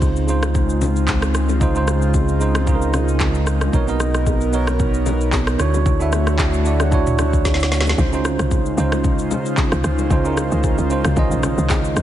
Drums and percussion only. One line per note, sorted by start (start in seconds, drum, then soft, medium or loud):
0.02 kick medium
0.02 high bongo medium
0.02 shaker medium
0.16 shaker soft
0.28 shaker medium
0.43 cross-stick loud
0.43 low bongo medium
0.43 shaker medium
0.54 kick loud
0.54 low conga medium
0.54 shaker medium
0.69 shaker medium
0.81 low bongo medium
0.81 low conga medium
0.81 shaker medium
0.96 shaker medium
1.08 kick medium
1.08 clap medium
1.08 high bongo medium
1.08 shaker medium
1.22 cross-stick loud
1.22 shaker medium
1.35 cross-stick medium
1.35 shaker medium
1.49 low bongo medium
1.49 shaker medium
1.61 kick loud
1.61 low conga medium
1.61 shaker medium
1.76 shaker medium
1.88 cross-stick medium
1.88 high bongo soft
1.88 low bongo medium
1.88 shaker loud
2.02 shaker soft
2.14 kick medium
2.14 high bongo medium
2.14 shaker medium
2.29 shaker soft
2.41 shaker medium
2.55 cross-stick loud
2.55 low bongo medium
2.55 shaker medium
2.67 kick loud
2.67 low conga medium
2.67 shaker medium
2.82 shaker medium
2.94 cross-stick medium
2.94 low bongo medium
2.94 low conga medium
2.94 shaker medium
3.08 shaker medium
3.20 kick medium
3.20 clap loud
3.20 high bongo medium
3.20 shaker medium
3.35 shaker soft
3.47 cross-stick medium
3.47 shaker medium
3.61 cross-stick medium
3.61 low bongo medium
3.61 shaker medium
3.73 kick loud
3.73 low conga medium
3.73 shaker medium
3.88 shaker medium
4.00 cross-stick medium
4.00 high bongo medium
4.00 low bongo medium
4.00 shaker loud
4.15 cross-stick medium
4.15 shaker medium
4.26 kick medium
4.26 high bongo medium
4.26 shaker medium
4.41 shaker soft
4.53 shaker medium
4.67 cross-stick loud
4.67 low bongo medium
4.67 shaker medium
4.79 kick loud
4.79 low conga medium
4.79 shaker medium
4.94 shaker medium
5.06 low bongo medium
5.06 low conga medium
5.06 shaker medium
5.21 shaker medium
5.33 kick medium
5.33 clap loud
5.33 high bongo medium
5.33 shaker medium
5.47 cross-stick medium
5.47 shaker medium
5.59 cross-stick medium
5.59 shaker medium
5.74 low bongo medium
5.74 shaker medium
5.86 kick loud
5.86 low conga medium
5.86 shaker medium
6.00 shaker medium
6.12 cross-stick medium
6.12 high bongo medium
6.12 low bongo medium
6.12 shaker loud
6.27 cross-stick medium
6.27 shaker soft
6.39 kick medium
6.39 clap loud
6.39 high bongo medium
6.39 shaker medium
6.53 shaker soft
6.66 shaker medium
6.80 cross-stick medium
6.80 high bongo medium
6.80 low bongo medium
6.80 shaker medium
6.91 kick loud
6.91 low conga medium
6.91 shaker medium
7.07 mid tom medium
7.07 shaker medium
7.19 cross-stick loud
7.19 low bongo medium
7.19 low conga medium
7.19 shaker medium
7.33 kick loud
7.33 shaker medium
7.45 kick medium
7.45 snare medium
7.45 high bongo medium
7.45 shaker medium
7.54 snare medium
7.60 snare medium
7.60 shaker medium
7.72 snare medium
7.72 shaker medium
7.81 snare medium
7.86 snare medium
7.86 low bongo medium
7.86 shaker medium
7.98 kick loud
7.98 low conga medium
7.98 shaker medium
8.13 shaker medium
8.25 cross-stick medium
8.25 high bongo soft
8.25 low bongo soft
8.25 shaker medium
8.39 cross-stick medium
8.39 shaker medium
8.51 kick medium
8.51 high bongo medium
8.51 shaker medium
8.66 shaker soft
8.78 shaker medium
8.92 cross-stick loud
8.92 low bongo medium
8.92 shaker medium
9.04 kick loud
9.04 low conga medium
9.04 shaker medium
9.19 shaker medium
9.31 low bongo medium
9.31 low conga medium
9.31 shaker medium
9.46 shaker medium
9.57 kick medium
9.57 clap loud
9.57 high bongo medium
9.57 shaker medium
9.72 cross-stick medium
9.72 shaker medium
9.84 cross-stick medium
9.84 shaker medium
9.99 low bongo medium
9.99 shaker medium
10.11 kick loud
10.11 low conga medium
10.11 shaker medium
10.25 shaker medium
10.37 cross-stick medium
10.37 high bongo soft
10.37 low bongo soft
10.37 shaker loud
10.52 shaker medium
10.64 kick medium
10.64 high bongo medium
10.64 shaker medium
10.78 shaker soft
10.90 shaker medium
11.05 cross-stick loud
11.05 low bongo medium
11.05 shaker medium
11.16 kick loud
11.16 low conga medium
11.16 shaker medium
11.31 shaker medium
11.43 cross-stick medium
11.43 low bongo medium
11.43 low conga medium
11.43 shaker medium
11.58 shaker medium
11.70 kick medium
11.70 clap medium
11.70 high bongo medium
11.70 shaker medium
11.84 shaker medium
11.97 cross-stick medium
11.97 shaker loud